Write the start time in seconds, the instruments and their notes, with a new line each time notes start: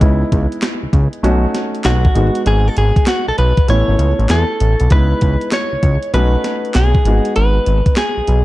0.00 analog synth bass C#2, grand piano G#3 B3 D#4 E4, kick, closed hi-hat
0.32 analog synth bass C#2, kick, closed hi-hat
0.52 closed hi-hat
0.62 snare, clap, closed hi-hat
0.83 analog synth bass C#2
0.93 analog synth bass C#2, kick, closed hi-hat
1.13 closed hi-hat
1.23 analog synth bass B1, grand piano A3 C#4 D#4 F#4, closed hi-hat
1.55 snare, closed hi-hat
1.75 closed hi-hat
1.84 analog synth bass B1, clean electric guitar F#4, snare, clap, closed hi-hat
2.05 kick
2.15 analog synth bass G#1, grand piano G#3 B3 D#4 F#4, closed hi-hat
2.35 closed hi-hat
2.46 analog synth bass G#1, clean electric guitar G#4, closed hi-hat
2.68 clean electric guitar A4
2.77 analog synth bass G#1, clean electric guitar G#4, closed hi-hat
2.96 kick, closed hi-hat
3.06 clean electric guitar F#4, snare, clap, closed hi-hat
3.28 analog synth bass B1, clean electric guitar A4
3.38 analog synth bass B1, clean electric guitar B4, closed hi-hat
3.57 kick, closed hi-hat
3.68 analog synth bass A1, grand piano A3 B3 C#4 E4, clean electric guitar C#5, closed hi-hat
3.88 analog synth bass G#1
3.99 analog synth bass C#2, closed hi-hat
4.19 analog synth bass A1, closed hi-hat
4.29 analog synth bass E2, clean electric guitar A4, snare, clap, closed hi-hat
4.60 analog synth bass A1, closed hi-hat
4.80 analog synth bass B1, closed hi-hat
4.90 analog synth bass C#2, grand piano G#3 B3 D#4 E4, clean electric guitar B4, kick, closed hi-hat
5.21 analog synth bass C#2, kick, closed hi-hat
5.41 closed hi-hat
5.51 clean electric guitar C#5, snare, clap, closed hi-hat
5.73 analog synth bass C#2
5.83 analog synth bass C#2, kick, closed hi-hat
6.03 closed hi-hat
6.14 analog synth bass B1, grand piano A3 C#4 D#4 F#4, clean electric guitar B4, closed hi-hat
6.44 snare, closed hi-hat
6.65 closed hi-hat
6.74 analog synth bass B1, clean electric guitar G#4, snare, clap, closed hi-hat
6.95 kick
7.05 analog synth bass G#1, grand piano G#3 B3 D#4 F#4, closed hi-hat
7.25 closed hi-hat
7.36 analog synth bass G#1, clean electric guitar B4, closed hi-hat
7.66 analog synth bass G#1, closed hi-hat
7.86 kick, closed hi-hat
7.96 clean electric guitar G#4, snare, clap, closed hi-hat
8.17 analog synth bass B1
8.28 analog synth bass B1, closed hi-hat